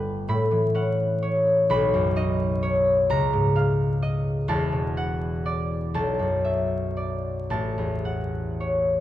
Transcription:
0.00 0.32 G1 medium
0.00 0.33 G2 medium
0.00 0.33 D3 medium
0.00 1.73 A3 medium
0.00 1.74 A4 medium
0.00 3.14 B4 medium
0.00 0.32 G5 medium
0.00 1.75 A5 loud
0.28 1.74 A2 medium
0.28 1.69 B5 medium
0.51 1.74 E3 medium
0.75 4.52 C#4 medium
0.75 3.14 F#5 medium
1.22 2.61 C#5 medium
1.70 3.14 B1 medium
1.70 3.15 B5 loud
1.94 3.14 F#2 medium
2.16 4.51 D#4 medium
2.16 4.01 D#5 medium
2.63 4.51 C#5 medium
3.10 4.52 C#2 medium
3.10 4.52 A#5 loud
3.33 4.52 G#2 medium
3.56 4.52 F5 medium
4.02 4.52 D#5 medium
4.48 5.96 E1 medium
4.48 5.97 E2 medium
4.48 5.94 A5 loud
4.72 5.97 B2 medium
4.97 8.04 F#5 medium
5.46 6.95 D5 medium
5.94 7.53 B1 medium
5.94 7.49 A5 loud
6.19 7.53 F#2 medium
6.45 9.00 E5 medium
6.97 7.54 D5 medium
7.50 9.00 A1 medium
7.50 9.00 A5 medium
7.78 9.00 E2 medium
8.05 9.00 F#5 medium
8.60 9.00 C#5 medium

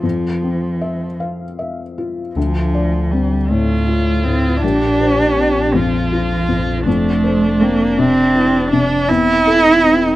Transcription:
0.00 2.32 F2 soft
0.00 0.27 F4 soft
0.04 1.18 F3 soft
0.43 1.05 C4 soft
0.81 1.44 E5 soft
1.20 1.82 F5 soft
1.59 2.21 E5 soft
1.98 2.36 F4 soft
2.36 4.64 D2 medium
2.36 4.59 D2 soft
2.36 3.13 F3 medium
2.74 3.35 D5 soft
3.11 3.51 G3 soft
3.11 3.73 C4 soft
3.49 4.11 A2 soft
3.49 4.25 A3 medium
3.49 4.64 F4 soft
3.88 4.48 F4 soft
4.24 4.63 A2 soft
4.24 4.61 C4 medium
4.62 6.88 A#1 medium
4.62 6.83 A#1 soft
4.62 5.77 D4 medium
4.62 5.77 G4 medium
5.01 5.60 C5 soft
5.37 5.97 C4 soft
5.75 6.34 F2 soft
5.75 6.88 F3 medium
5.75 6.86 F4 medium
6.12 6.72 F4 soft
6.48 6.85 F2 soft
6.86 9.10 F1 medium
6.86 9.05 F2 soft
6.86 7.62 A3 medium
6.86 9.11 D4 medium
7.24 7.83 C5 soft
7.61 8.00 A#3 medium
7.61 8.20 C4 soft
7.98 8.57 C3 soft
7.98 8.71 C4 medium
8.35 8.94 E4 soft
8.72 9.09 C3 soft
8.72 9.10 D4 medium
9.09 10.16 E1 medium
9.09 10.16 E2 medium
9.09 10.16 C4 soft
9.09 10.16 E4 medium
9.47 10.05 A4 soft
9.84 10.16 C4 soft

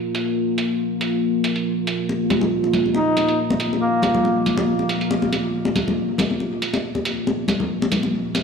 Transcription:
0.00 8.43 A#3 medium
0.00 8.43 F4 medium
0.15 closed hi-hat medium
0.58 closed hi-hat medium
1.01 closed hi-hat medium
1.44 closed hi-hat medium
1.56 closed hi-hat soft
1.87 closed hi-hat medium
2.09 muted conga soft
2.30 closed hi-hat medium
2.30 high conga medium
2.30 low conga medium
2.41 muted conga medium
2.41 low conga medium
2.64 muted conga soft
2.73 closed hi-hat medium
2.73 low conga medium
2.86 high conga medium
2.94 3.38 D#4 medium
2.94 muted conga medium
3.17 closed hi-hat medium
3.17 muted conga soft
3.29 closed hi-hat soft
3.50 muted conga medium
3.50 high conga medium
3.60 closed hi-hat medium
3.73 muted conga soft
3.81 4.42 A#3 medium
4.02 closed hi-hat medium
4.02 muted conga medium
4.02 high conga medium
4.02 low conga medium
4.15 low conga medium
4.25 muted conga soft
4.46 closed hi-hat medium
4.46 low conga medium
4.57 muted conga medium
4.57 high conga medium
4.79 muted conga soft
4.89 closed hi-hat medium
5.01 closed hi-hat soft
5.11 muted conga medium
5.22 high conga medium
5.33 closed hi-hat medium
5.33 muted conga medium
5.65 muted conga medium
5.76 closed hi-hat medium
5.76 high conga medium
5.76 low conga medium
5.88 muted conga soft
5.88 low conga medium
6.18 closed hi-hat medium
6.18 muted conga medium
6.18 low conga medium
6.31 high conga medium
6.40 muted conga soft
6.62 closed hi-hat medium
6.74 closed hi-hat soft
6.74 muted conga medium
6.95 muted conga soft
6.95 high conga medium
7.05 closed hi-hat medium
7.27 muted conga medium
7.48 closed hi-hat medium
7.48 muted conga medium
7.48 high conga medium
7.48 low conga medium
7.60 low conga medium
7.82 muted conga medium
7.92 closed hi-hat medium
7.92 low conga medium
8.03 muted conga soft
8.03 high conga medium
8.35 closed hi-hat medium
8.35 muted conga medium

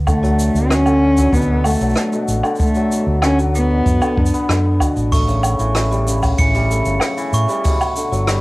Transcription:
0.00 0.49 D2 medium
0.07 0.60 D3 medium
0.07 0.71 A3 medium
0.07 kick loud
0.07 low woodblock medium
0.07 shaker medium
0.23 0.91 F#3 medium
0.23 shaker soft
0.39 shaker medium
0.54 1.27 D2 medium
0.54 0.91 B2 medium
0.54 shaker medium
0.70 1.34 C#4 loud
0.70 cross-stick loud
0.70 shaker medium
0.86 1.39 D3 medium
0.86 low woodblock medium
0.86 shaker soft
1.17 1.70 F#3 loud
1.17 kick medium
1.17 shaker medium
1.17 shaker soft
1.33 1.74 D2 medium
1.33 1.70 B2 medium
1.33 1.66 B3 medium
1.33 kick loud
1.33 shaker medium
1.41 shaker soft
1.64 2.17 D3 medium
1.64 2.28 A3 medium
1.64 low woodblock medium
1.64 shaker medium
1.70 shaker medium
1.73 shaker medium
1.77 1.93 B1 medium
1.77 shaker soft
1.81 2.49 F#3 medium
1.81 shaker soft
1.85 shaker soft
1.89 shaker soft
1.93 cross-stick medium
1.93 shaker soft
1.97 shaker medium
2.12 2.49 B2 medium
2.12 shaker soft
2.28 2.40 A1 medium
2.28 shaker medium
2.43 2.96 D3 loud
2.43 low woodblock medium
2.43 shaker soft
2.55 shaker soft
2.60 3.19 A3 medium
2.60 kick loud
2.60 shaker medium
2.66 shaker soft
2.74 3.28 F#3 medium
2.74 shaker soft
2.91 3.28 B2 medium
2.91 shaker medium
3.07 3.80 D2 medium
3.22 3.75 D3 medium
3.22 3.37 C#4 loud
3.22 cross-stick medium
3.22 low woodblock medium
3.22 shaker medium
3.39 4.07 F#3 medium
3.39 shaker soft
3.54 4.77 B3 medium
3.54 shaker medium
3.71 4.07 B2 medium
3.86 3.98 F#2 medium
3.86 kick loud
3.86 shaker medium
4.02 4.16 D3 medium
4.02 low woodblock medium
4.02 shaker soft
4.17 4.30 F#2 medium
4.17 4.48 D3 medium
4.17 kick loud
4.26 shaker medium
4.33 4.65 B3 medium
4.33 shaker soft
4.49 4.80 F#2 medium
4.49 4.86 D3 medium
4.49 cross-stick loud
4.49 shaker medium
4.65 8.41 B3 medium
4.80 4.92 D2 medium
4.80 4.95 B2 medium
4.80 kick medium
4.80 low woodblock medium
4.80 shaker medium
4.96 5.54 A1 medium
4.96 5.17 B2 medium
4.96 shaker soft
5.12 6.70 A3 medium
5.12 5.30 C#6 medium
5.12 kick loud
5.12 open hi-hat medium
5.12 shaker medium
5.26 6.06 C#3 medium
5.26 open hi-hat soft
5.26 shaker soft
5.43 low woodblock medium
5.43 shaker medium
5.59 6.32 A1 medium
5.59 6.12 E3 medium
5.59 shaker soft
5.74 cross-stick loud
5.74 open hi-hat medium
5.74 shaker medium
5.91 6.12 G3 medium
5.91 shaker soft
6.07 6.85 C#3 medium
6.07 shaker medium
6.23 kick medium
6.23 open hi-hat medium
6.23 low woodblock medium
6.23 shaker soft
6.38 6.80 A1 medium
6.38 6.91 E3 medium
6.38 6.69 C#7 medium
6.38 kick loud
6.38 open hi-hat medium
6.38 shaker medium
6.54 6.91 G3 medium
6.54 open hi-hat medium
6.54 shaker soft
6.70 8.41 A3 medium
6.70 shaker medium
6.85 6.98 G1 medium
6.85 7.70 C#3 medium
6.85 shaker soft
7.00 cross-stick medium
7.00 open hi-hat medium
7.00 low woodblock medium
7.00 shaker medium
7.17 7.70 E3 loud
7.17 open hi-hat soft
7.17 shaker soft
7.33 7.45 A2 medium
7.33 7.52 C#6 medium
7.33 shaker medium
7.49 7.70 G3 loud
7.49 shaker soft
7.64 8.02 B2 medium
7.64 kick loud
7.64 open hi-hat medium
7.64 shaker medium
7.80 open hi-hat soft
7.80 low woodblock medium
7.80 shaker soft
7.96 8.41 D3 medium
7.96 shaker medium
8.11 8.41 G1 medium
8.11 8.41 F#3 medium
8.11 shaker soft
8.27 8.41 G3 medium
8.27 cross-stick loud
8.27 open hi-hat medium
8.27 shaker medium

